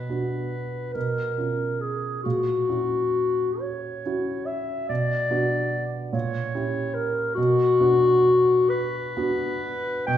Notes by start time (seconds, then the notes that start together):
Already playing: B2 B4
0.09 B3 D4 F#4
0.94 B2 A#4
1.38 C#4 F4
1.80 G#4
2.23 A#2 F#4
2.69 C#4 E4 F#4
3.60 C#5
4.05 C#4 E4 F#4
4.46 E5
4.89 B2 D5
5.31 B3 D4 F#4
6.12 A#2 C#5
6.55 C#4 E4 G4
6.94 A#4
7.35 B2 F#4
7.80 B3 D4 F#4
8.70 B4
9.17 B3 D4 F#4
10.06 B2 G5